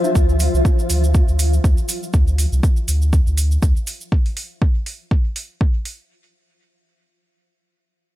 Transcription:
0.00 2.15 F3 medium
0.00 2.10 F4 medium
0.00 2.15 F4 medium
0.00 2.10 C5 medium
0.00 2.10 E5 medium
0.04 high conga soft
0.04 cabasa soft
0.15 0.48 D2 medium
0.15 kick loud
0.15 cabasa soft
0.29 cabasa soft
0.40 open hi-hat medium
0.40 cabasa medium
0.54 0.62 C2 medium
0.54 cabasa soft
0.65 kick loud
0.65 cabasa soft
0.79 cabasa soft
0.90 1.22 D2 medium
0.90 open hi-hat medium
0.90 cabasa medium
1.04 cabasa soft
1.14 kick loud
1.14 cabasa soft
1.28 1.59 D2 medium
1.28 cabasa soft
1.39 open hi-hat medium
1.39 cabasa loud
1.53 cabasa soft
1.64 1.74 D2 loud
1.64 kick loud
1.64 cabasa soft
1.77 cabasa soft
1.89 open hi-hat medium
1.89 cabasa loud
2.03 cabasa soft
2.13 2.46 D2 loud
2.13 kick loud
2.13 cabasa soft
2.28 cabasa soft
2.38 open hi-hat medium
2.38 cabasa medium
2.52 2.60 C2 medium
2.52 cabasa soft
2.63 kick loud
2.63 cabasa soft
2.77 cabasa soft
2.88 3.21 D2 medium
2.88 open hi-hat medium
2.88 cabasa medium
3.02 cabasa soft
3.13 kick loud
3.13 cabasa soft
3.27 3.58 D2 medium
3.27 cabasa soft
3.38 open hi-hat medium
3.38 cabasa medium
3.51 cabasa soft
3.62 3.72 D2 loud
3.62 kick loud
3.62 cabasa medium
3.77 cabasa soft
3.87 open hi-hat medium
3.87 cabasa medium
4.01 cabasa soft
4.12 kick loud
4.26 open hi-hat soft
4.37 open hi-hat medium
4.62 kick loud
4.86 open hi-hat medium
5.11 kick loud
5.36 open hi-hat medium
5.61 kick loud
5.85 open hi-hat medium

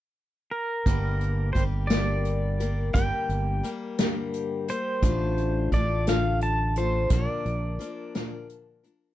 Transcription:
0.51 1.52 A#4 medium
0.86 1.51 G1 medium
0.86 1.56 G2 medium
0.86 1.56 D3 medium
0.86 1.53 G3 medium
0.86 1.54 A#3 medium
0.86 1.55 G4 medium
0.86 1.55 A#4 medium
0.86 kick loud
0.86 closed hi-hat medium
1.21 closed hi-hat soft
1.53 2.90 G1 medium
1.53 1.90 G3 medium
1.53 1.89 A#3 medium
1.53 1.89 G4 medium
1.53 1.89 A#4 medium
1.53 1.63 C5 medium
1.53 kick medium
1.53 closed hi-hat medium
1.87 2.60 G3 medium
1.87 2.60 A#3 medium
1.87 2.59 G4 medium
1.87 2.59 A#4 medium
1.87 2.89 D5 medium
1.87 snare loud
1.87 closed hi-hat medium
1.91 2.60 G2 soft
1.91 2.60 D3 medium
2.25 closed hi-hat medium
2.60 2.93 G3 soft
2.60 2.93 A#3 soft
2.60 2.94 G4 soft
2.60 2.94 A#4 medium
2.60 closed hi-hat medium
2.93 3.10 G1 medium
2.93 3.63 G2 medium
2.93 3.64 D3 medium
2.93 3.62 G3 medium
2.93 3.63 A#3 medium
2.93 3.64 G4 medium
2.93 3.64 A#4 medium
2.93 3.68 G5 medium
2.93 kick loud
2.93 closed hi-hat medium
3.29 3.60 G1 medium
3.29 closed hi-hat medium
3.63 3.98 G3 soft
3.63 3.98 A#3 medium
3.63 3.98 G4 medium
3.63 3.97 A#4 medium
3.63 closed hi-hat medium
3.98 4.69 G2 medium
3.98 4.69 D3 medium
3.98 4.69 G3 medium
3.98 4.68 A#3 medium
3.98 4.68 G4 medium
3.98 4.67 A#4 medium
3.98 snare medium
3.98 closed hi-hat medium
4.34 closed hi-hat medium
4.68 5.03 G3 soft
4.68 5.03 A#3 soft
4.68 5.03 G4 soft
4.68 5.03 A#4 soft
4.68 5.69 C5 medium
4.68 closed hi-hat medium
5.02 5.68 A1 medium
5.02 5.72 A2 medium
5.02 5.72 D3 medium
5.02 5.71 A3 medium
5.02 5.72 D4 medium
5.02 5.73 F4 medium
5.02 5.73 A4 medium
5.02 kick loud
5.02 closed hi-hat medium
5.38 closed hi-hat medium
5.71 7.07 A1 medium
5.71 6.07 A3 medium
5.71 6.07 D4 medium
5.71 6.07 F4 medium
5.71 6.06 A4 medium
5.71 6.09 D5 medium
5.71 kick medium
5.71 closed hi-hat medium
6.07 6.78 A2 soft
6.07 6.77 D3 medium
6.07 6.78 A3 medium
6.07 6.78 D4 medium
6.07 6.78 F4 medium
6.07 6.76 A4 medium
6.07 6.42 F5 medium
6.07 snare loud
6.07 closed hi-hat medium
6.41 6.78 A5 medium
6.41 closed hi-hat medium
6.76 7.11 A3 soft
6.76 7.11 D4 soft
6.76 7.11 F4 soft
6.76 7.12 A4 soft
6.76 7.13 C5 medium
6.76 closed hi-hat soft
7.10 7.26 A#1 medium
7.10 7.80 A#2 medium
7.10 7.80 D3 medium
7.10 7.78 F3 medium
7.10 7.79 A#3 medium
7.10 7.79 D4 medium
7.10 7.80 A#4 medium
7.10 8.47 D5 medium
7.10 kick loud
7.10 closed hi-hat medium
7.46 7.77 A#1 medium
7.46 closed hi-hat medium
7.79 8.15 F3 medium
7.79 8.15 A#3 medium
7.79 8.14 D4 medium
7.79 8.14 A#4 medium
7.79 closed hi-hat medium
8.15 8.85 A#2 medium
8.15 8.85 D3 medium
8.15 8.85 F3 medium
8.15 8.84 A#3 medium
8.15 8.83 D4 medium
8.15 8.82 A#4 medium
8.15 snare loud
8.15 closed hi-hat medium
8.50 closed hi-hat medium
8.83 9.14 F3 soft
8.83 9.14 A#3 soft
8.83 9.14 D4 medium
8.83 9.14 A#4 medium
8.83 closed hi-hat medium

